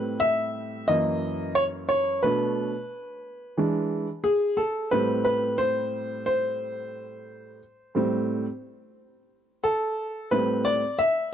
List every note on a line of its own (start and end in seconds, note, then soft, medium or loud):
0.00 0.85 A2 soft
0.00 0.85 G3 soft
0.00 0.85 C4 medium
0.00 0.23 B4 medium
0.20 0.90 E5 loud
0.88 2.19 F#2 medium
0.88 2.20 E3 soft
0.88 2.20 A#3 medium
0.88 1.51 D#5 loud
1.55 1.63 C#5 loud
1.89 2.20 C#5 medium
2.23 2.72 B2 soft
2.23 2.72 A3 soft
2.23 2.73 D4 medium
2.23 4.31 B4 medium
3.58 4.06 E3 medium
3.58 4.07 G#3 soft
3.58 4.07 D4 medium
4.24 4.59 G#4 medium
4.57 4.89 A4 medium
4.91 7.58 A2 medium
4.91 7.58 G3 soft
4.91 7.59 C4 medium
4.91 5.23 B4 medium
5.25 5.57 B4 medium
5.58 6.23 C5 medium
6.26 9.60 C5 medium
7.95 8.44 A2 medium
7.95 8.45 G3 soft
7.95 8.45 C4 medium
9.64 10.34 A4 medium
10.31 10.81 A2 soft
10.31 10.81 G3 soft
10.31 10.81 C4 medium
10.31 10.66 B4 medium
10.65 11.00 D5 medium
10.99 11.31 E5 loud